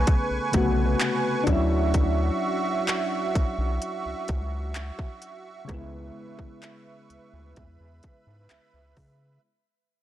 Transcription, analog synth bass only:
0, 0, Header, 1, 2, 480
1, 0, Start_track
1, 0, Tempo, 937500
1, 995, Time_signature, 4, 2, 24, 8
1, 5134, End_track
2, 0, Start_track
2, 0, Title_t, "Analog synth bass"
2, 0, Program_c, 0, 38
2, 156, Note_on_c, 0, 35, 48
2, 204, Note_off_c, 0, 35, 0
2, 278, Note_on_c, 0, 35, 98
2, 490, Note_off_c, 0, 35, 0
2, 754, Note_on_c, 0, 38, 102
2, 1181, Note_off_c, 0, 38, 0
2, 1718, Note_on_c, 0, 35, 50
2, 1766, Note_off_c, 0, 35, 0
2, 1836, Note_on_c, 0, 35, 88
2, 1942, Note_off_c, 0, 35, 0
2, 2077, Note_on_c, 0, 37, 50
2, 2125, Note_off_c, 0, 37, 0
2, 2197, Note_on_c, 0, 37, 99
2, 2516, Note_off_c, 0, 37, 0
2, 2914, Note_on_c, 0, 37, 107
2, 3128, Note_off_c, 0, 37, 0
2, 3635, Note_on_c, 0, 38, 50
2, 3683, Note_off_c, 0, 38, 0
2, 3755, Note_on_c, 0, 38, 96
2, 3862, Note_off_c, 0, 38, 0
2, 3877, Note_on_c, 0, 40, 96
2, 3983, Note_off_c, 0, 40, 0
2, 3996, Note_on_c, 0, 40, 96
2, 4102, Note_off_c, 0, 40, 0
2, 4235, Note_on_c, 0, 44, 101
2, 4341, Note_off_c, 0, 44, 0
2, 4357, Note_on_c, 0, 37, 48
2, 4404, Note_off_c, 0, 37, 0
2, 4475, Note_on_c, 0, 37, 88
2, 4581, Note_off_c, 0, 37, 0
2, 4592, Note_on_c, 0, 49, 107
2, 4807, Note_off_c, 0, 49, 0
2, 5134, End_track
0, 0, End_of_file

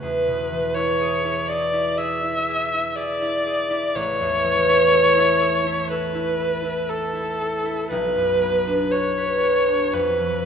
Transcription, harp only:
0, 0, Header, 1, 2, 480
1, 0, Start_track
1, 0, Tempo, 980392
1, 16, Time_signature, 4, 2, 24, 8
1, 2896, Tempo, 995025
1, 3856, Tempo, 1020408
1, 5055, End_track
2, 0, Start_track
2, 0, Title_t, "Harp"
2, 0, Program_c, 0, 46
2, 12, Note_on_c, 0, 40, 53
2, 133, Note_on_c, 0, 47, 44
2, 251, Note_on_c, 0, 52, 42
2, 372, Note_on_c, 0, 64, 44
2, 493, Note_on_c, 0, 68, 44
2, 606, Note_off_c, 0, 64, 0
2, 612, Note_on_c, 0, 64, 44
2, 727, Note_off_c, 0, 68, 0
2, 733, Note_on_c, 0, 68, 47
2, 843, Note_off_c, 0, 64, 0
2, 849, Note_on_c, 0, 64, 45
2, 965, Note_off_c, 0, 68, 0
2, 971, Note_on_c, 0, 68, 50
2, 1089, Note_off_c, 0, 64, 0
2, 1094, Note_on_c, 0, 64, 43
2, 1212, Note_off_c, 0, 68, 0
2, 1218, Note_on_c, 0, 68, 47
2, 1332, Note_off_c, 0, 64, 0
2, 1338, Note_on_c, 0, 64, 42
2, 1446, Note_off_c, 0, 68, 0
2, 1452, Note_on_c, 0, 68, 50
2, 1568, Note_off_c, 0, 64, 0
2, 1574, Note_on_c, 0, 64, 46
2, 1687, Note_off_c, 0, 68, 0
2, 1693, Note_on_c, 0, 68, 47
2, 1806, Note_off_c, 0, 64, 0
2, 1812, Note_on_c, 0, 64, 44
2, 1921, Note_off_c, 0, 40, 0
2, 1934, Note_on_c, 0, 33, 58
2, 1950, Note_off_c, 0, 52, 0
2, 1951, Note_off_c, 0, 47, 0
2, 1952, Note_off_c, 0, 68, 0
2, 2057, Note_on_c, 0, 40, 46
2, 2176, Note_on_c, 0, 52, 48
2, 2290, Note_off_c, 0, 64, 0
2, 2296, Note_on_c, 0, 64, 45
2, 2411, Note_on_c, 0, 69, 53
2, 2527, Note_off_c, 0, 64, 0
2, 2532, Note_on_c, 0, 64, 49
2, 2639, Note_off_c, 0, 69, 0
2, 2645, Note_on_c, 0, 69, 48
2, 2768, Note_off_c, 0, 64, 0
2, 2774, Note_on_c, 0, 64, 50
2, 2888, Note_off_c, 0, 69, 0
2, 2894, Note_on_c, 0, 69, 51
2, 3001, Note_off_c, 0, 64, 0
2, 3007, Note_on_c, 0, 64, 49
2, 3123, Note_off_c, 0, 69, 0
2, 3129, Note_on_c, 0, 69, 49
2, 3242, Note_off_c, 0, 64, 0
2, 3248, Note_on_c, 0, 64, 44
2, 3360, Note_off_c, 0, 69, 0
2, 3365, Note_on_c, 0, 69, 51
2, 3487, Note_off_c, 0, 64, 0
2, 3493, Note_on_c, 0, 64, 50
2, 3609, Note_off_c, 0, 69, 0
2, 3615, Note_on_c, 0, 69, 51
2, 3729, Note_off_c, 0, 64, 0
2, 3734, Note_on_c, 0, 64, 47
2, 3830, Note_off_c, 0, 33, 0
2, 3856, Note_on_c, 0, 35, 62
2, 3873, Note_off_c, 0, 64, 0
2, 3874, Note_off_c, 0, 52, 0
2, 3874, Note_off_c, 0, 69, 0
2, 3875, Note_off_c, 0, 40, 0
2, 3971, Note_on_c, 0, 42, 47
2, 4092, Note_on_c, 0, 59, 48
2, 4215, Note_on_c, 0, 62, 45
2, 4336, Note_on_c, 0, 66, 49
2, 4454, Note_on_c, 0, 71, 46
2, 4563, Note_off_c, 0, 66, 0
2, 4568, Note_on_c, 0, 66, 44
2, 4679, Note_off_c, 0, 62, 0
2, 4685, Note_on_c, 0, 62, 47
2, 4807, Note_on_c, 0, 41, 60
2, 4827, Note_off_c, 0, 62, 0
2, 4828, Note_off_c, 0, 66, 0
2, 4830, Note_off_c, 0, 42, 0
2, 4831, Note_off_c, 0, 35, 0
2, 4935, Note_on_c, 0, 53, 42
2, 5055, Note_off_c, 0, 41, 0
2, 5055, Note_off_c, 0, 53, 0
2, 5055, Note_off_c, 0, 59, 0
2, 5055, Note_off_c, 0, 71, 0
2, 5055, End_track
0, 0, End_of_file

